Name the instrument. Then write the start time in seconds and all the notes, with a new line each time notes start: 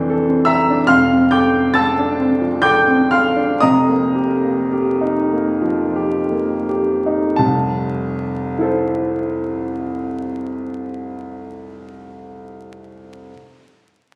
grand piano
Already playing: F1 F2 E3 C4 D4 A4 G5 D6 G6
0.10 A4
0.29 C4
0.45 A4 E5 A#5 E6
0.70 D4
0.87 F1 F2 F5 C6 F6
1.10 C4
1.31 A4 G5 D6 G6
1.54 C4
1.74 A4 A5 E6 A6
1.99 D4
2.19 C4
2.41 F3
2.62 A4 G5 D6 G6
2.88 C4
3.11 A4 F5 C6 F6
3.36 D4
3.60 F1 F2 D#5 A#5 D#6
3.89 A#3
4.15 G4
4.45 A#3
4.73 G4
5.01 D#4
5.33 A#3
5.62 F3
5.96 G4
6.31 A#3
6.69 G4
7.06 D#4
7.36 F1 C2 A5
8.59 E4 A4
8.63 C5